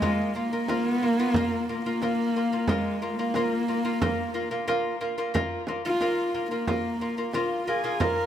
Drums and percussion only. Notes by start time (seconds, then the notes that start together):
0.02 frame drum
0.68 frame drum
1.02 frame drum
1.34 frame drum
1.68 frame drum
2.02 frame drum
2.68 frame drum
3.34 frame drum
3.68 frame drum
4.02 frame drum
4.69 frame drum
5.02 frame drum
5.35 frame drum
5.67 frame drum
6.01 frame drum
6.34 frame drum
6.67 frame drum
7.00 frame drum
7.33 frame drum
7.67 frame drum
8.00 frame drum